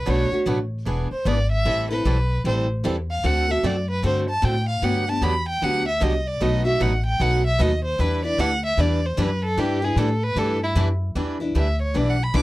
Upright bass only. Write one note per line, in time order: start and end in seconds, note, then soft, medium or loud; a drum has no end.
0.07 0.30 B1 medium
0.32 muted upright bass stroke soft
0.46 0.85 A1 medium
0.86 1.09 E1 medium
1.11 muted upright bass stroke soft
1.25 1.64 G#1 medium
1.65 2.04 A1 medium
2.05 2.43 B1 medium
2.44 2.83 A1 medium
2.84 3.23 E2 medium
3.24 3.62 D2 medium
3.63 4.02 F#2 medium
4.04 4.42 G2 medium
4.43 4.81 A2 medium
4.82 5.21 G2 medium
5.21 5.60 E2 medium
5.62 6.00 D2 medium
6.01 6.40 C2 medium
6.41 6.79 B1 medium
6.80 7.19 A1 medium
7.20 7.58 B1 medium
7.60 7.98 D#2 medium
7.99 8.37 E2 medium
8.38 8.77 D2 medium
8.78 9.16 E2 medium
9.18 9.56 F#2 medium
9.57 9.95 G2 medium
9.96 10.35 A2 medium
10.36 10.74 G2 medium
10.75 11.14 F#2 medium
11.15 11.54 E2 medium
11.55 11.93 D2 medium
11.95 12.33 B1 medium
12.34 12.42 C2 medium